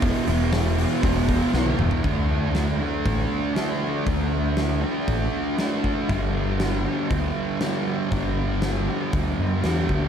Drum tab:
HH |o-o-o-o-o-o-----|o---o---o---o---|o---o---o---o---|o---o---o---o---|
SD |----o-------o---|----o-------o---|----o-------o---|----o-------o---|
T1 |-------------o--|----------------|----------------|----------------|
T2 |--------------o-|----------------|----------------|----------------|
FT |---------------o|----------------|----------------|----------------|
BD |o-------o-o-----|o-------o-------|o-------o-----o-|o-------o-------|

HH |o---o---o---o---|
SD |----o-------o---|
T1 |----------------|
T2 |----------------|
FT |----------------|
BD |o-------o-----o-|